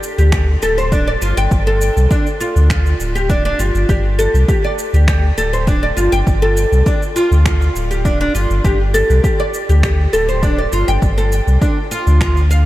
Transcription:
Already playing: D5
0.03 shaker
0.18 D2 G4, shaker
0.32 G4, finger snap, kick, shaker
0.62 D1 A4, shaker
0.78 C5, shaker
0.92 D4, kick, shaker
1.08 D5
1.21 G1 F4, shaker
1.37 G1 G5, shaker
1.51 G1, kick, shaker
1.67 A4
1.81 shaker
1.96 C2, shaker
2.11 D4, kick, shaker
2.27 shaker
2.40 F4, shaker
2.56 D2, shaker
2.70 F4, finger snap, kick, shaker
2.86 shaker
3.00 D1, shaker
3.15 G4, shaker
3.30 D4, kick, shaker
3.45 D4
3.59 G1 F4, shaker
3.75 G1, shaker
3.89 G1 G4, kick, shaker
4.19 A4, shaker
4.34 C2, shaker
4.48 G4, kick, shaker
4.64 D5
4.79 shaker
4.93 D2 G4, shaker
5.08 G4, finger snap, kick, shaker
5.37 D1 A4, shaker
5.53 C5, shaker
5.67 D4, kick, shaker
5.83 D5
5.97 G1 F4, shaker
6.12 G1 G5, shaker
6.27 G1, kick, shaker
6.42 A4
6.57 shaker
6.72 C2, shaker
6.86 D4, kick, shaker
7.02 shaker
7.16 F4, shaker
7.31 D2, shaker
7.46 F4, finger snap, kick, shaker
7.62 shaker
7.75 D1, shaker
7.91 G4, shaker
8.05 D4, kick, shaker
8.21 D4
8.35 G1 F4, shaker
8.50 G1, shaker
8.64 G1 G4, kick, shaker
8.94 A4, shaker
9.10 C2, shaker
9.24 G4, kick, shaker
9.40 D5
9.54 shaker
9.69 D2 G4, shaker
9.83 G4, finger snap, kick, shaker
10.13 D1 A4, shaker
10.29 C5, shaker
10.43 D4, kick, shaker
10.59 D5
10.72 G1 F4, shaker
10.88 G1 G5, shaker
11.02 G1, kick, shaker
11.18 A4, shaker
11.32 shaker
11.47 C2, shaker
11.62 D4, kick, shaker
11.91 F4, shaker
12.07 D2, shaker
12.21 F4, finger snap, kick, shaker
12.37 shaker
12.51 F5, shaker

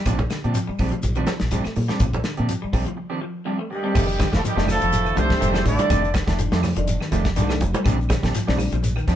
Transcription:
0.06 A#1 C3 F3 C4 D4 G4, kick, closed hi-hat, low conga, claves, shekere
0.19 muted clean electric guitar stroke, kick, closed hi-hat, high conga
0.30 D3, muted clean electric guitar stroke, snare, closed hi-hat, claves, shekere
0.44 A#2 F3 C4 D4 G4, closed hi-hat
0.54 F3, closed hi-hat, shekere
0.67 G3, muted clean electric guitar stroke, muted fingered electric bass stroke
0.79 A#1 F3 C4 D4 G4, kick, open hi-hat, high conga, claves, shekere
0.92 F3, muted clean electric guitar stroke, closed hi-hat, low conga
1.03 A#1, muted clean electric guitar stroke, closed hi-hat, high conga, shekere
1.15 D#3 F3 C4 D4 G4, closed hi-hat, low conga, claves
1.27 F3, muted clean electric guitar stroke, snare, closed hi-hat, high conga, shekere
1.40 A#1, snare, closed hi-hat
1.51 F3 G3 C4 D4 G4, kick, closed hi-hat, high conga, shekere
1.64 A3, muted clean electric guitar stroke, muted fingered electric bass stroke, snare, closed hi-hat, claves
1.75 A#2, muted clean electric guitar stroke, open hi-hat, high conga, shekere
1.88 G3 C4 D4 G4, snare, closed hi-hat, high conga
2.00 A#1 C3, kick, closed hi-hat, low conga, claves, shekere
2.13 muted clean electric guitar stroke, kick, closed hi-hat, high conga
2.24 D3, muted clean electric guitar stroke, snare, closed hi-hat, claves, shekere
2.37 A#2 F3 C4 D4 G4, closed hi-hat
2.49 F3, closed hi-hat, shekere
2.62 G3, muted clean electric guitar stroke, muted fingered electric bass stroke
2.73 A#1 F3 C4 D4 G4, kick, open hi-hat, high conga, claves, shekere
2.86 F3, muted clean electric guitar stroke, closed hi-hat, low conga
2.97 muted clean electric guitar stroke
3.10 D#3 F3 C4 D4 G4
3.21 F3, muted clean electric guitar stroke
3.45 F3 G3 C4 D4 G4
3.59 A3, muted clean electric guitar stroke
3.70 G2 D#3 G3 G4, muted clean electric guitar stroke
3.83 G3 C4 D4 G4
3.94 F1 C3 D#3 G3 A3 D4 G4, kick, crash, low conga, claves, shekere
4.07 muted clean electric guitar stroke, shekere
4.19 D3, muted clean electric guitar stroke, kick, snare, closed hi-hat, high conga, claves, shekere
4.32 F1 A2 F3 A3 G4, muted clean electric guitar stroke, kick, snare, closed hi-hat, shekere
4.36 A3 A4
4.43 G2 D#3 F3 G3 G4, muted clean electric guitar stroke, closed hi-hat, shekere
4.56 F1 D#3 G3 A3 D4 G4, snare, shekere
4.68 A2 A3 A4, muted clean electric guitar stroke, snare, open hi-hat, high conga, low conga, claves, shekere
4.72 F3
4.80 F1 F3, muted clean electric guitar stroke, closed hi-hat, shekere
4.92 closed hi-hat, high conga, shekere
5.05 D#3, muted clean electric guitar stroke, claves, shekere
5.15 C2 C3 D#3 F3 G3 A3 C4 D4 G4 C5, kick, closed hi-hat, low conga, shekere
5.19 A3
5.30 kick, snare, shekere
5.40 F1 D#3 G3 A3 D4 G4, closed hi-hat, shekere
5.54 A3, snare, high conga, claves, shekere
5.64 A1 D3 D#3 G3 A3 D4 D5, muted clean electric guitar stroke, kick, open hi-hat, high conga, low conga, shekere
5.78 G3, muted clean electric guitar stroke, muted fingered electric bass stroke, closed hi-hat, high conga, shekere
5.89 F1 C3 D#3 A3 G4, muted clean electric guitar stroke, kick, closed hi-hat, claves, shekere
6.03 muted clean electric guitar stroke, shekere
6.14 D3, muted clean electric guitar stroke, kick, snare, closed hi-hat, high conga, claves, shekere
6.27 F1 D#3 G3 A3 D4 G4, kick, snare, closed hi-hat, shekere
6.39 F3, muted clean electric guitar stroke, closed hi-hat, shekere
6.52 F2 D#3 A3 D4 G4, snare, shekere
6.63 muted clean electric guitar stroke, snare, open hi-hat, high conga, low conga, claves, shekere
6.76 F1 D#3 F3 G3 A3 D4, muted clean electric guitar stroke, closed hi-hat, shekere
6.87 closed hi-hat, high conga, shekere
7.01 D#3, muted clean electric guitar stroke, snare, claves, shekere
7.11 F1 D#3 F3 A3 D4 G4, kick, closed hi-hat, low conga, shekere
7.25 kick, snare, closed hi-hat, shekere
7.36 C2 D#3 G3 A3 D4 G4, closed hi-hat, shekere
7.49 A3, snare, high conga, claves, shekere
7.61 F1, muted clean electric guitar stroke, kick, closed hi-hat, high conga, low conga, shekere
7.74 G3, muted clean electric guitar stroke, closed hi-hat, high conga, shekere
7.85 A#1 C3 F3 G3 C4 D4 G4, kick, closed hi-hat, low conga, claves, shekere
7.98 muted clean electric guitar stroke, shekere
8.09 D3, muted clean electric guitar stroke, kick, snare, closed hi-hat, high conga, claves, shekere
8.23 A#1 C4 D4 G4, kick, snare, closed hi-hat, high conga, shekere
8.35 F3, muted clean electric guitar stroke, snare, closed hi-hat, shekere
8.47 A#1 F3 G3 C4 D4 G4, snare, shekere
8.58 muted clean electric guitar stroke, open hi-hat, high conga, low conga, claves, shekere
8.72 A#1 F3, muted clean electric guitar stroke, closed hi-hat, shekere
8.83 closed hi-hat, high conga, shekere
8.96 D#3, muted clean electric guitar stroke, claves, shekere
9.07 F2 F3 G3 C4 D4 G4, kick, snare, closed hi-hat, shekere

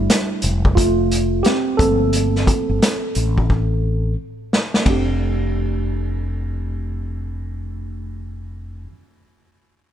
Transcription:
Already playing: G3 A3 D4 E4
0.10 snare, closed hi-hat
0.42 F1, closed hi-hat
0.65 kick
0.75 A3 F4, kick, closed hi-hat
1.11 closed hi-hat
1.43 C4 G4, snare, closed hi-hat
1.77 G1 F3 A3 A#3 C4 A4, kick, closed hi-hat
2.13 closed hi-hat
2.36 snare
2.47 kick, closed hi-hat
2.69 G1
2.82 snare, closed hi-hat
3.15 A1, closed hi-hat
3.38 kick
3.50 kick
4.53 snare
4.74 snare
4.81 A3 C4
4.86 F1 D4 G4, kick, ride

